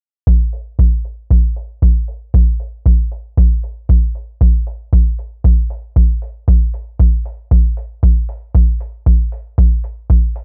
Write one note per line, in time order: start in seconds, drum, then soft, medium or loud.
0.27 kick loud
0.53 open hi-hat medium
0.79 kick medium
1.05 open hi-hat medium
1.31 kick loud
1.56 open hi-hat medium
1.82 kick medium
2.08 open hi-hat medium
2.34 kick loud
2.60 open hi-hat medium
2.86 kick loud
3.12 open hi-hat medium
3.37 kick loud
3.63 open hi-hat medium
3.89 kick loud
4.15 open hi-hat medium
4.41 kick loud
4.67 open hi-hat medium
4.93 kick loud
5.19 open hi-hat medium
5.44 kick loud
5.70 open hi-hat medium
5.96 kick loud
6.22 open hi-hat medium
6.48 kick loud
6.74 open hi-hat medium
7.00 kick loud
7.25 open hi-hat medium
7.51 kick loud
7.77 open hi-hat medium
8.03 kick loud
8.29 open hi-hat medium
8.55 kick loud
8.80 open hi-hat medium
9.06 kick medium
9.32 open hi-hat medium
9.58 kick loud
9.84 open hi-hat medium
10.10 kick medium
10.36 open hi-hat medium